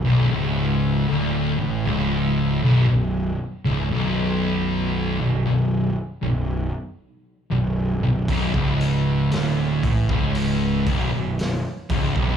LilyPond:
<<
  \new Staff \with { instrumentName = "Distorted electric guitar" } { \clef bass \time 4/4 \key b \minor \tempo 4 = 58 b,,16 cis,8. d,8 a,16 cis,8. b,,16 b,,8 r16 cis,16 b,,16~ | b,,4 b,,16 b,,8 r16 b,,8 r8. b,,8 b,,16 | b,,16 cis,8. d,8 a,16 cis,8. b,,16 b,,8 r16 cis,16 b,,16 | }
  \new Staff \with { instrumentName = "Distorted electric guitar" } { \clef bass \time 4/4 \key b \minor b,,16 cis,8. d,8 a,16 cis,8. b,,16 b,,8 r16 cis,16 b,,16~ | b,,4 b,,16 b,,8 r16 b,,8 r8. b,,8 b,,16 | b,,16 cis,8. d,8 a,16 cis,8. b,,16 b,,8 r16 cis,16 b,,16 | }
  \new Staff \with { instrumentName = "Picked electric bass" } { \clef bass \time 4/4 \key b \minor b,,,16 cis,,8. d,,8 a,,16 cis,,8. b,,,16 b,,,8 r16 cis,,16 b,,,16~ | b,,,4 b,,,16 b,,,8 r16 b,,,8 r8. b,,,8 b,,,16 | b,,,16 cis,,8. d,,8 a,,16 cis,,8. b,,,16 b,,,8 r16 cis,,16 b,,,16 | }
  \new DrumStaff \with { instrumentName = "Drums" } \drummode { \time 4/4 r4 r4 r4 r4 | r4 r4 r4 r4 | <hho bd>16 bd16 hho8 <hho sn>8 <hho bd>16 bd16 hho8 <hho bd>8 <hho sn>8 <hho bd>16 bd16 | }
>>